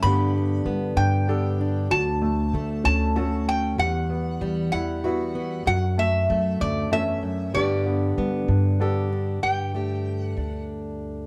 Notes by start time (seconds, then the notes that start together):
Already playing: C#4 A4
0.02 G2 D3 B3 D4 B5
0.06 G4
0.35 B3
0.66 G3 B3
0.96 G2 D4 G5
1.28 B3 D4 G4 A4
1.61 D4
1.90 D2 F#3 A5
2.22 A3
2.53 D3 A3
2.84 D2 C#4 A5
3.16 A3 C#4 F#4 A4
3.48 C#4 G5
3.78 E2 G3 F#5
4.10 B3
4.41 E3 G3
4.72 E2 E4 F#5
5.04 B3 E4 F#4
5.35 B3
5.66 F#2 F#3 F#5
5.98 A3 E5
6.30 F#3 A3
6.60 D2 F#2 D5
6.91 E2 A3 C#4 A4 E5
7.23 F#2
7.54 G2 D3 G3 B3 D4 G4 D5
7.86 B3
8.18 G3 B3
8.48 G2 D4
8.80 B3 D4 G4 A4
9.13 D4
9.43 G2 G4 G5
9.75 A3 D4 G4
10.23 F#5
10.37 D2 D4